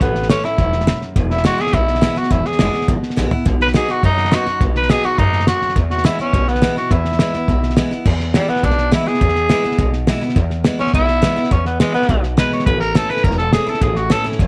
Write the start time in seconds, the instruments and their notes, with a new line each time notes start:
0.01 upright bass A1, steel-string acoustic guitar A2, tenor saxophone B3, kick, snare
0.15 snare
0.23 snare
0.29 steel-string acoustic guitar E3 A3 C#4 E4, tenor saxophone C#4, snare, hi-hat pedal
0.44 steel-string acoustic guitar C#4 E4, tenor saxophone E4, muted upright bass stroke, snare
0.58 upright bass E1, steel-string acoustic guitar G#2, kick, snare
0.73 snare
0.80 snare
0.87 steel-string acoustic guitar F#2, snare, hi-hat pedal
1.02 muted upright bass stroke, snare
1.16 upright bass E1, steel-string acoustic guitar E2, kick, snare
1.30 tenor saxophone E4, snare
1.37 snare
1.44 steel-string acoustic guitar E3 G#3 B3 E4, tenor saxophone F#4, snare, hi-hat pedal
1.58 steel-string acoustic guitar B3 E4, tenor saxophone G#4, muted upright bass stroke, snare
1.67 snare
1.73 upright bass B1, steel-string acoustic guitar B2, tenor saxophone E4, kick, snare
1.88 snare
1.95 snare
2.01 steel-string acoustic guitar E3 G#3 B3 E4, snare, hi-hat pedal
2.16 steel-string acoustic guitar B3 E4, tenor saxophone F#4, muted upright bass stroke, snare
2.23 snare
2.31 upright bass E1, steel-string acoustic guitar E2, tenor saxophone E4, kick, snare
2.45 tenor saxophone G#4, snare
2.52 snare
2.59 upright bass F#1, steel-string acoustic guitar E3 G#3 B3 E4, snare, hi-hat pedal
2.73 steel-string acoustic guitar B3 E4, muted upright bass stroke, snare
2.81 snare
2.88 upright bass G#1, steel-string acoustic guitar B2, kick, snare
3.03 muted upright bass stroke, snare
3.10 snare
3.16 upright bass A1, steel-string acoustic guitar E3 G#3 B3 E4, snare, hi-hat pedal
3.31 steel-string acoustic guitar B3 E4, floor tom
3.45 upright bass B1, steel-string acoustic guitar B2, kick, snare
3.60 tenor saxophone B4, snare
3.68 snare
3.74 steel-string acoustic guitar F#3 B3 D#4 F#4, tenor saxophone G#4, snare, hi-hat pedal
3.88 steel-string acoustic guitar D#4 F#4, tenor saxophone F#4, muted upright bass stroke, snare
4.03 upright bass F#2, steel-string acoustic guitar F#2, tenor saxophone D#4, kick, snare
4.18 snare
4.25 snare
4.31 steel-string acoustic guitar F#3 B3 D#4 F#4, tenor saxophone F#4, snare, hi-hat pedal
4.46 steel-string acoustic guitar D#4 F#4, muted upright bass stroke, snare
4.60 upright bass B1, steel-string acoustic guitar B2, kick, snare
4.75 tenor saxophone B4, snare
4.82 snare
4.89 steel-string acoustic guitar F#3 B3 D#4 F#4, tenor saxophone G#4, snare, hi-hat pedal
5.04 steel-string acoustic guitar D#4 F#4, tenor saxophone F#4, muted upright bass stroke, snare
5.18 upright bass F#2, steel-string acoustic guitar G#2, tenor saxophone D#4, kick, snare
5.33 snare
5.40 snare
5.47 steel-string acoustic guitar F#2, tenor saxophone F#4, snare, hi-hat pedal
5.61 muted upright bass stroke, snare
5.69 snare
5.76 upright bass E2, steel-string acoustic guitar E2, kick, snare
5.90 tenor saxophone F#4, snare
5.98 snare
6.04 steel-string acoustic guitar E3 G#3 B3 E4, tenor saxophone E4, snare, hi-hat pedal
6.19 steel-string acoustic guitar B3 E4, tenor saxophone C#4, muted upright bass stroke, snare
6.33 upright bass B1, steel-string acoustic guitar B2, kick, snare
6.48 tenor saxophone B3, snare
6.55 snare
6.62 steel-string acoustic guitar E3 G#3 B3 E4, snare, hi-hat pedal
6.76 steel-string acoustic guitar B3 E4, tenor saxophone F#4, snare
6.90 upright bass E2, steel-string acoustic guitar E2, tenor saxophone E4, kick, snare
7.05 snare
7.12 snare
7.19 steel-string acoustic guitar E3 G#3 B3 E4, snare, hi-hat pedal
7.34 steel-string acoustic guitar B3 E4, muted upright bass stroke, snare
7.48 upright bass B1, steel-string acoustic guitar B2, kick, snare
7.63 snare
7.70 snare
7.76 steel-string acoustic guitar E3 G#3 B3 E4, snare, hi-hat pedal
7.91 steel-string acoustic guitar B3 E4, snare
8.06 steel-string acoustic guitar E2, upright bass E2, kick, snare, crash
8.20 snare
8.34 steel-string acoustic guitar E3 G#3 B3 E4, tenor saxophone G3, snare, hi-hat pedal
8.48 tenor saxophone B3, steel-string acoustic guitar B3 E4, muted upright bass stroke, snare
8.56 snare
8.63 upright bass B1, steel-string acoustic guitar B2, tenor saxophone D4, kick, snare
8.70 snare
8.78 snare
8.91 steel-string acoustic guitar E3 G#3 B3 E4, tenor saxophone E4, snare, hi-hat pedal
9.06 steel-string acoustic guitar B3 E4, tenor saxophone G#4, snare
9.14 snare
9.21 upright bass E2, steel-string acoustic guitar E2, kick, snare
9.29 snare
9.36 snare
9.49 steel-string acoustic guitar E3 G#3 B3 E4, snare, hi-hat pedal
9.64 steel-string acoustic guitar B3 E4, muted upright bass stroke, snare
9.71 snare
9.78 upright bass B1, steel-string acoustic guitar B2, kick, snare
9.93 snare
10.07 steel-string acoustic guitar E3 G#3 B3 E4, snare, hi-hat pedal
10.21 steel-string acoustic guitar B3 E4, muted upright bass stroke, snare
10.29 snare
10.36 steel-string acoustic guitar E2, upright bass E2, kick, snare
10.50 snare
10.64 steel-string acoustic guitar E3 G#3 B3 E4, snare, hi-hat pedal
10.79 steel-string acoustic guitar B3 E4, tenor saxophone C#4, muted upright bass stroke, snare
10.87 snare
10.93 upright bass B1, steel-string acoustic guitar B2, tenor saxophone E4, kick, snare
11.08 snare
11.22 steel-string acoustic guitar E3 G#3 B3 E4, snare, hi-hat pedal
11.36 steel-string acoustic guitar B3 E4, snare
11.44 snare
11.51 upright bass E2, tenor saxophone C#4, kick, snare
11.65 tenor saxophone B3, snare
11.80 steel-string acoustic guitar E3 G#3 B3 E4, tenor saxophone G#3, snare, hi-hat pedal
11.94 tenor saxophone B3, steel-string acoustic guitar B3 E4, muted upright bass stroke, snare
12.02 snare
12.09 upright bass B1, steel-string acoustic guitar B2, kick, snare
12.23 snare
12.37 steel-string acoustic guitar E3 G#3 B3 E4, tenor saxophone B4, snare, hi-hat pedal
12.52 tenor saxophone C#5, muted upright bass stroke, snare
12.59 snare
12.66 upright bass A1, steel-string acoustic guitar A2, tenor saxophone B4, kick, snare
12.80 tenor saxophone A#4, snare
12.95 steel-string acoustic guitar E3 A3 C#4 E4, tenor saxophone A4, snare, hi-hat pedal
13.10 steel-string acoustic guitar C#4 E4, tenor saxophone B4, muted upright bass stroke, snare
13.17 snare
13.24 upright bass E1, steel-string acoustic guitar E2, tenor saxophone A#4, kick, snare
13.31 snare
13.38 tenor saxophone A4, snare
13.53 steel-string acoustic guitar E3 A3 C#4 E4, tenor saxophone G#4, snare, hi-hat pedal
13.66 steel-string acoustic guitar C#4 E4, tenor saxophone A4, muted upright bass stroke, snare
13.74 snare
13.81 upright bass A1, steel-string acoustic guitar A2, tenor saxophone G#4, kick, snare
13.96 tenor saxophone F#4, snare
14.10 steel-string acoustic guitar E3 A3 C#4 E4, tenor saxophone A4, snare, hi-hat pedal
14.24 steel-string acoustic guitar C#4 E4, muted upright bass stroke, snare
14.32 snare
14.39 upright bass E1, steel-string acoustic guitar E2, kick, snare